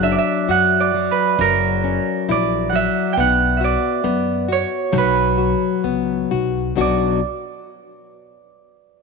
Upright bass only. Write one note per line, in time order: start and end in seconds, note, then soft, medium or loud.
0.00 0.15 F#1 loud
0.48 1.07 F#2 medium
1.39 1.97 F#1 loud
2.29 2.86 A#1 loud
3.17 3.74 B1 loud
4.04 4.62 F#2 medium
4.93 5.53 B1 loud
5.84 6.27 C#2 medium
6.31 6.74 B1 medium
6.78 7.20 B1 medium